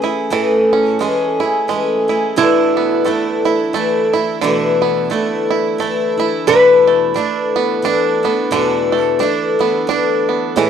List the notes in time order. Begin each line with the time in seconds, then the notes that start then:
Already playing: E3 C#4 G#4
0.02 A3 C#4 E4 G#4
0.30 A2 E3 A3 C#4 G#4
0.73 C#4
0.91 F#4
0.99 E3 G#3 A3 C#4 G#4
1.40 A3 C#4 E4 G#4
1.68 E3 G#3 A3 C#4 G#4
2.08 A3 C#4 E4 G#4
2.36 E2 B2 D3 E3 A3 D4 E4
2.77 B3
3.04 E3 A3 D4 E4
3.45 E3 A3 D4 E4
3.73 E3 A3 D4 E4
4.13 E3 A3 D4 E4
4.41 E2 B2 D3 E3 A3 D4 E4
4.82 B3
5.10 E3 A3 D4 E4
5.50 E4
5.78 E3 A3 D4 E4
6.17 A3 D4 E4
6.22 E3
6.47 E2 B2 D3 E3 A3 D4 E4 B4
6.87 A3
7.14 E3 A3 D4 E4
7.56 B3
7.82 E3 A3 D4 E4
8.23 E3 A3 B3 D4 E4
8.51 E2 B2 D3 E3 A3 D4 E4
8.92 A3
9.01 A4
9.19 E3 A3 D4 E4
9.59 E3 A3 B3 D4 E4
9.87 E3 A3 D4 E4
10.29 B3
10.56 A2 E3 A3 C#4 G#4 C#5